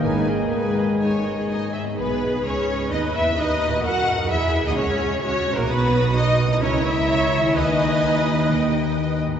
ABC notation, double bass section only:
X:1
M:4/4
L:1/16
Q:1/4=128
K:G#m
V:1 name="Double bass section" clef=bass
G,,,4 z12 | B,,,4 C,,4 D,,2 E,,2 D,,4 | F,,4 E,,3 D,, C,,4 C,,3 A,,, | B,,,8 C,,8 |
D,,12- D,,2 z2 |]